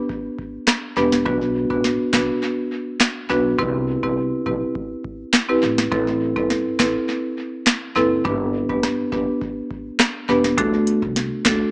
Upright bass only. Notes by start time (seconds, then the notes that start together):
0.97 E1
1.26 B1
1.70 A1
2.13 B1
3.30 B1
3.59 C2
4.03 C2
4.46 B1
5.63 A1
5.92 A1
6.36 G1
6.79 A1
7.96 F#1
8.25 G1
8.69 G1
9.12 F#1
10.29 E1
10.58 D2
11.02 C2
11.45 D2